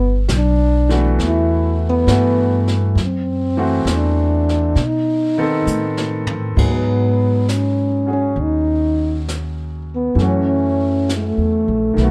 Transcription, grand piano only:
0.89 1.15 E3 medium
0.89 1.15 A3 medium
0.89 1.16 B3 medium
0.89 1.16 F#4 medium
2.08 2.63 E3 medium
2.08 2.63 A3 medium
2.08 2.63 B3 soft
2.08 2.63 F#4 medium
3.57 4.71 E3 medium
3.57 4.71 A3 medium
3.57 4.71 C4 medium
3.57 4.71 F#4 medium
5.38 6.52 D#3 medium
5.38 6.52 B3 medium
5.38 6.52 C4 medium
5.38 6.53 A4 medium
6.57 10.18 F#3 soft
6.57 10.18 B3 soft
6.57 10.18 D#4 soft
6.57 8.07 G#4 soft
8.06 10.18 C#4 soft
8.06 10.18 F#4 soft
8.06 10.19 G#4 soft
10.16 11.97 E3 soft
10.16 11.95 A3 soft
10.16 11.99 C#4 soft
10.21 11.99 F#4 soft
11.94 12.11 D#3 soft
11.94 12.11 A3 soft
12.00 12.11 B3 soft
12.00 12.11 F#4 soft

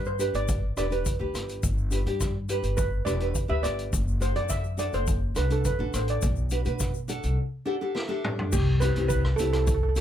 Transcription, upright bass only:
0.00 0.28 G2 medium
0.34 0.72 G1 medium
0.77 1.03 E1 medium
1.19 1.32 D2 medium
1.34 1.60 G1 medium
1.63 2.02 G1 loud
2.06 2.58 G2 medium
2.63 3.02 G1 medium
3.06 3.32 E1 medium
3.50 3.62 D2 medium
3.63 3.89 G1 medium
3.93 4.32 F#1 medium
4.36 4.88 F#2 medium
4.93 5.32 F#1 medium
5.37 5.62 C2 medium
5.79 5.92 A1 medium
5.94 6.19 A1 medium
6.23 6.61 B1 loud
6.66 7.18 B2 medium
7.24 7.36 C2 medium
8.53 8.91 C2 loud
8.96 9.34 C2 loud
9.38 10.01 C2 medium

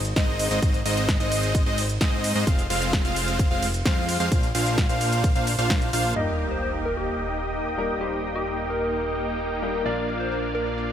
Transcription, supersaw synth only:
0.16 0.48 G#3 loud
0.16 0.48 C4 medium
0.16 0.48 D#4 medium
0.16 0.48 C5 medium
0.16 0.48 D#5 loud
0.51 0.60 G#3 medium
0.51 0.60 C4 medium
0.51 0.60 D#4 medium
0.51 0.60 C5 medium
0.51 0.60 D#5 medium
0.62 0.79 G#3 medium
0.62 0.79 C4 medium
0.62 0.79 D#4 medium
0.62 0.79 D#5 medium
0.85 1.17 G#3 medium
0.85 1.17 C4 medium
0.85 1.17 D#4 medium
0.85 1.17 C5 medium
0.85 1.17 D#5 loud
1.20 1.64 G#3 medium
1.20 1.64 C4 medium
1.20 1.64 D#4 medium
1.20 1.64 C5 medium
1.20 1.64 D#5 loud
1.66 1.82 G#3 medium
1.66 1.82 C4 medium
1.66 1.82 D#4 medium
1.66 1.82 C5 medium
1.66 1.82 D#5 loud
2.01 2.33 G#3 loud
2.01 2.33 C4 medium
2.01 2.33 D#4 medium
2.01 2.33 C5 medium
2.01 2.33 D#5 loud
2.35 2.44 G#3 medium
2.35 2.44 C4 medium
2.35 2.44 D#4 medium
2.35 2.44 C5 medium
2.35 2.44 D#5 loud
2.47 2.63 G#3 medium
2.47 2.63 C4 medium
2.47 2.63 F4 medium
2.47 2.63 C5 medium
2.70 3.02 G#3 medium
2.70 3.02 C4 medium
2.70 3.02 F4 medium
2.70 3.02 C5 medium
2.70 3.02 F5 loud
3.05 3.48 G#3 loud
3.05 3.48 C4 medium
3.05 3.48 F4 medium
3.05 3.48 C5 medium
3.05 3.48 F5 loud
3.51 3.67 G#3 medium
3.51 3.67 C4 medium
3.51 3.67 F4 medium
3.51 3.67 C5 medium
3.51 3.67 F5 loud
3.85 4.17 G#3 loud
3.85 4.17 C4 loud
3.85 4.17 F4 medium
3.85 4.17 C5 medium
3.85 4.17 F5 loud
4.20 4.29 G#3 medium
4.20 4.29 C4 medium
4.20 4.29 F4 medium
4.20 4.29 C5 medium
4.20 4.29 F5 loud
4.32 4.48 A#3 medium
4.32 4.48 D4 medium
4.32 4.48 F4 medium
4.32 4.48 C5 medium
4.32 4.48 F5 medium
4.55 4.87 A#3 medium
4.55 4.87 D4 medium
4.55 4.87 F4 medium
4.55 4.87 C5 medium
4.55 4.87 F5 loud
4.89 5.33 A#3 loud
4.89 5.33 D4 medium
4.89 5.33 F4 medium
4.89 5.33 C5 medium
4.89 5.33 F5 loud
5.35 5.52 A#3 medium
5.35 5.52 D4 medium
5.35 5.52 F4 medium
5.35 5.52 C5 medium
5.35 5.52 F5 loud
5.59 5.90 A#3 medium
5.59 5.90 D4 medium
5.59 5.90 F4 medium
5.59 5.90 C5 medium
5.59 5.90 F5 loud
5.93 6.13 A#3 loud
5.93 6.13 D4 medium
5.93 6.14 F4 medium
5.93 6.13 C5 medium
5.93 6.13 F5 loud
6.16 9.83 A#3 medium
6.16 9.83 D#4 medium
6.16 9.83 G4 medium
6.16 9.83 D#5 medium
6.16 9.83 G5 medium
9.85 10.92 A#3 medium
9.85 10.92 D4 medium
9.85 10.92 F4 medium
9.85 10.92 D5 medium
9.85 10.92 F5 medium

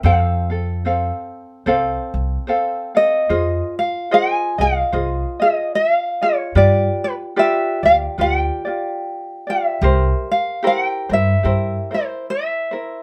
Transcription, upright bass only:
0.03 1.09 F2 medium
1.66 1.97 C2 medium
2.14 2.36 C2 medium
3.30 3.60 F2 medium
4.58 4.81 C2 medium
4.93 5.23 C2 medium
6.55 6.86 G2 medium
7.83 8.06 D2 medium
8.18 8.49 D2 medium
9.81 10.12 C2 loud
11.10 11.32 G2 medium
11.45 11.75 G2 medium

